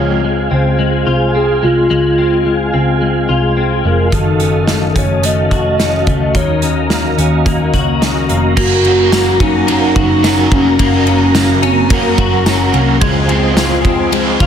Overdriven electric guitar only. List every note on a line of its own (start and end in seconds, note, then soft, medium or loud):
0.00 0.20 F3 medium
0.00 0.20 G#3 medium
0.00 0.20 C4 medium
0.00 0.20 F4 medium
8.56 8.84 F#2 medium
8.56 8.85 C#3 medium
8.56 8.85 F#3 medium
8.56 8.85 A#3 medium
8.56 8.84 C#4 medium
8.56 8.82 F#4 medium
8.83 9.68 A#3 soft
8.83 9.70 C#4 soft
8.83 9.67 F#4 medium
8.88 9.66 F#3 soft
9.67 10.21 F#3 medium
9.67 10.24 A#3 medium
9.67 10.26 C#4 medium
9.72 10.25 F#4 medium
10.23 10.79 F#3 medium
10.23 10.80 A#3 medium
10.23 10.83 C#4 medium
10.27 10.81 F#4 medium
10.77 11.89 F#2 medium
10.77 11.90 C#3 medium
10.77 11.88 F#3 medium
10.82 11.90 A#3 medium
10.82 11.92 C#4 medium
10.82 11.93 F#4 medium
11.89 12.43 F#3 medium
11.89 12.45 A#3 medium
11.89 12.48 C#4 medium
11.94 12.48 F#4 medium
12.44 13.01 F#3 medium
12.44 13.02 A#3 medium
12.44 13.02 C#4 medium
12.49 13.03 F#4 medium
13.00 13.29 C#3 medium
13.00 13.29 F3 loud
13.00 13.30 G#3 medium
13.00 13.29 C4 medium
13.00 13.26 F4 medium
13.27 14.13 C4 medium
13.27 14.12 F4 soft
13.32 14.12 G#3 medium
14.11 14.47 F3 medium
14.11 14.47 G#3 medium
14.11 14.47 C4 medium
14.15 14.47 F4 medium